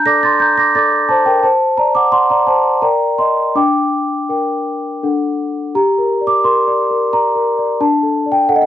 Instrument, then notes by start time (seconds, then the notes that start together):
celesta
Already playing: D4 A5 A#5 F#6 G6
0.06 A4 D5 D6 A#6
0.23 C6 A6
0.40 A#5 G6
0.58 D6 A#6
0.75 A4 D5 D6 A6
1.09 C5 A5
1.26 A#4 G5
1.43 C5 A5
1.77 D5 A#5
1.95 F#5 D6
2.12 D5 F#5 C6
2.30 D5 A#5
2.47 C5 A5
2.82 A#4 D5 G5 A#5
3.18 D#5 C6
3.55 D4 G5 D6
4.29 A#4 G5
5.03 D4 A4 F#5
5.75 G4 A#5
5.98 A#4
6.21 D5
6.27 D6
6.44 A#4 C6
6.67 D5
6.91 A#4
7.13 D5 A#5
7.35 A#4
7.58 D5
7.80 D4 A5
8.03 A4
8.26 D5
8.32 G5
8.49 A4 F#5
8.56 D#5
8.62 F#5